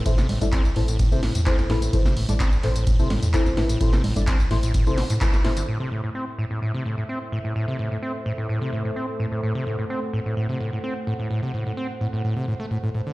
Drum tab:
RD |x---x---x---x---|x---x---x---x---|x---x---x---x---|----------------|
HH |x-oxx-oxx-ox--ox|x-oxx-oxx-ox--ox|x-oxx-oxx-oxx-ox|----------------|
TB |xx-xxx-xxx-xxx-x|xx-xxx-xxx-xxx-x|xx-xxx-xxx-xxx-x|----------------|
CP |-x--x-------x---|----x-x-----x---|-x--x-------x---|----------------|
SD |-o--------o--oo-|-o--------o--oo-|-o----o---o--oo-|----------------|
CG |--OO------------|---O------O-----|--OO------------|----------------|
BD |o--oo---o---o---|o---o---o---o---|o--oo---o---o---|----------------|

RD |----------------|----------------|----------------|
HH |----------------|----------------|----------------|
TB |----------------|----------------|----------------|
CP |----------------|----------------|----------------|
SD |----------------|----------------|----------------|
CG |----------------|----------------|----------------|
BD |----------------|----------------|----------------|